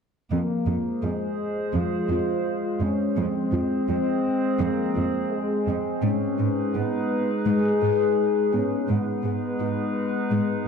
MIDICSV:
0, 0, Header, 1, 5, 480
1, 0, Start_track
1, 0, Key_signature, -4, "minor"
1, 0, Tempo, 714286
1, 216, Time_signature, 4, 2, 24, 8
1, 7176, End_track
2, 0, Start_track
2, 0, Title_t, "Ambient pad"
2, 0, Program_c, 0, 92
2, 218, Note_on_c, 0, 56, 57
2, 218, Note_on_c, 0, 68, 56
2, 219, Note_on_c, 0, 72, 55
2, 2110, Note_off_c, 0, 56, 0
2, 2110, Note_off_c, 0, 68, 0
2, 2111, Note_off_c, 0, 72, 0
2, 2134, Note_on_c, 0, 72, 57
2, 2137, Note_on_c, 0, 60, 56
2, 2139, Note_on_c, 0, 68, 56
2, 2140, Note_on_c, 0, 56, 54
2, 4028, Note_off_c, 0, 72, 0
2, 4029, Note_off_c, 0, 60, 0
2, 4031, Note_off_c, 0, 56, 0
2, 4031, Note_off_c, 0, 68, 0
2, 4049, Note_on_c, 0, 63, 58
2, 4049, Note_on_c, 0, 68, 57
2, 4051, Note_on_c, 0, 56, 57
2, 4052, Note_on_c, 0, 71, 54
2, 5946, Note_off_c, 0, 68, 0
2, 5947, Note_off_c, 0, 56, 0
2, 5972, Note_off_c, 0, 63, 0
2, 5972, Note_off_c, 0, 71, 0
2, 5977, Note_on_c, 0, 56, 55
2, 5979, Note_on_c, 0, 63, 57
2, 5980, Note_on_c, 0, 68, 54
2, 5980, Note_on_c, 0, 71, 58
2, 7176, Note_off_c, 0, 56, 0
2, 7176, Note_off_c, 0, 63, 0
2, 7176, Note_off_c, 0, 68, 0
2, 7176, Note_off_c, 0, 71, 0
2, 7176, End_track
3, 0, Start_track
3, 0, Title_t, "Synth pluck"
3, 0, Program_c, 1, 84
3, 215, Note_on_c, 1, 53, 59
3, 359, Note_off_c, 1, 53, 0
3, 457, Note_on_c, 1, 65, 45
3, 600, Note_off_c, 1, 65, 0
3, 700, Note_on_c, 1, 65, 43
3, 843, Note_off_c, 1, 65, 0
3, 1177, Note_on_c, 1, 53, 63
3, 1321, Note_off_c, 1, 53, 0
3, 1420, Note_on_c, 1, 65, 49
3, 1563, Note_off_c, 1, 65, 0
3, 1895, Note_on_c, 1, 56, 46
3, 2039, Note_off_c, 1, 56, 0
3, 2133, Note_on_c, 1, 53, 65
3, 2278, Note_off_c, 1, 53, 0
3, 2372, Note_on_c, 1, 65, 49
3, 2518, Note_off_c, 1, 65, 0
3, 2613, Note_on_c, 1, 65, 46
3, 2758, Note_off_c, 1, 65, 0
3, 3092, Note_on_c, 1, 53, 66
3, 3237, Note_off_c, 1, 53, 0
3, 3332, Note_on_c, 1, 65, 50
3, 3477, Note_off_c, 1, 65, 0
3, 3814, Note_on_c, 1, 56, 51
3, 3959, Note_off_c, 1, 56, 0
3, 4052, Note_on_c, 1, 56, 64
3, 4198, Note_off_c, 1, 56, 0
3, 4293, Note_on_c, 1, 68, 48
3, 4438, Note_off_c, 1, 68, 0
3, 4532, Note_on_c, 1, 68, 45
3, 4677, Note_off_c, 1, 68, 0
3, 5014, Note_on_c, 1, 56, 70
3, 5158, Note_off_c, 1, 56, 0
3, 5256, Note_on_c, 1, 68, 46
3, 5400, Note_off_c, 1, 68, 0
3, 5739, Note_on_c, 1, 59, 49
3, 5882, Note_off_c, 1, 59, 0
3, 5978, Note_on_c, 1, 56, 61
3, 6122, Note_off_c, 1, 56, 0
3, 6220, Note_on_c, 1, 68, 46
3, 6362, Note_off_c, 1, 68, 0
3, 6460, Note_on_c, 1, 68, 44
3, 6603, Note_off_c, 1, 68, 0
3, 6934, Note_on_c, 1, 56, 67
3, 7078, Note_off_c, 1, 56, 0
3, 7176, End_track
4, 0, Start_track
4, 0, Title_t, "French horn section"
4, 0, Program_c, 2, 60
4, 217, Note_on_c, 2, 58, 54
4, 670, Note_off_c, 2, 58, 0
4, 691, Note_on_c, 2, 56, 41
4, 1173, Note_on_c, 2, 65, 51
4, 1174, Note_off_c, 2, 56, 0
4, 1894, Note_on_c, 2, 61, 49
4, 1895, Note_off_c, 2, 65, 0
4, 2135, Note_off_c, 2, 61, 0
4, 2140, Note_on_c, 2, 60, 48
4, 2606, Note_off_c, 2, 60, 0
4, 2614, Note_on_c, 2, 60, 51
4, 3085, Note_off_c, 2, 60, 0
4, 3096, Note_on_c, 2, 58, 54
4, 3570, Note_on_c, 2, 56, 56
4, 3576, Note_off_c, 2, 58, 0
4, 4053, Note_off_c, 2, 56, 0
4, 4053, Note_on_c, 2, 61, 67
4, 4531, Note_on_c, 2, 59, 52
4, 4535, Note_off_c, 2, 61, 0
4, 4901, Note_off_c, 2, 59, 0
4, 5016, Note_on_c, 2, 68, 63
4, 5721, Note_off_c, 2, 68, 0
4, 5739, Note_on_c, 2, 61, 50
4, 5977, Note_off_c, 2, 61, 0
4, 5979, Note_on_c, 2, 59, 43
4, 7176, Note_off_c, 2, 59, 0
4, 7176, End_track
5, 0, Start_track
5, 0, Title_t, "Cello section"
5, 0, Program_c, 3, 48
5, 208, Note_on_c, 3, 41, 40
5, 262, Note_off_c, 3, 41, 0
5, 448, Note_on_c, 3, 41, 27
5, 501, Note_off_c, 3, 41, 0
5, 688, Note_on_c, 3, 41, 30
5, 742, Note_off_c, 3, 41, 0
5, 1166, Note_on_c, 3, 41, 42
5, 1220, Note_off_c, 3, 41, 0
5, 1408, Note_on_c, 3, 41, 30
5, 1462, Note_off_c, 3, 41, 0
5, 1885, Note_on_c, 3, 41, 31
5, 1939, Note_off_c, 3, 41, 0
5, 2128, Note_on_c, 3, 41, 46
5, 2181, Note_off_c, 3, 41, 0
5, 2365, Note_on_c, 3, 41, 32
5, 2419, Note_off_c, 3, 41, 0
5, 2611, Note_on_c, 3, 41, 35
5, 2665, Note_off_c, 3, 41, 0
5, 3085, Note_on_c, 3, 41, 51
5, 3139, Note_off_c, 3, 41, 0
5, 3336, Note_on_c, 3, 41, 35
5, 3390, Note_off_c, 3, 41, 0
5, 3814, Note_on_c, 3, 41, 36
5, 3868, Note_off_c, 3, 41, 0
5, 4049, Note_on_c, 3, 44, 53
5, 4102, Note_off_c, 3, 44, 0
5, 4293, Note_on_c, 3, 44, 33
5, 4346, Note_off_c, 3, 44, 0
5, 4532, Note_on_c, 3, 44, 36
5, 4586, Note_off_c, 3, 44, 0
5, 5012, Note_on_c, 3, 44, 47
5, 5065, Note_off_c, 3, 44, 0
5, 5254, Note_on_c, 3, 44, 31
5, 5308, Note_off_c, 3, 44, 0
5, 5731, Note_on_c, 3, 44, 30
5, 5785, Note_off_c, 3, 44, 0
5, 5970, Note_on_c, 3, 44, 40
5, 6024, Note_off_c, 3, 44, 0
5, 6211, Note_on_c, 3, 44, 27
5, 6265, Note_off_c, 3, 44, 0
5, 6453, Note_on_c, 3, 44, 29
5, 6507, Note_off_c, 3, 44, 0
5, 6925, Note_on_c, 3, 44, 38
5, 6979, Note_off_c, 3, 44, 0
5, 7176, End_track
0, 0, End_of_file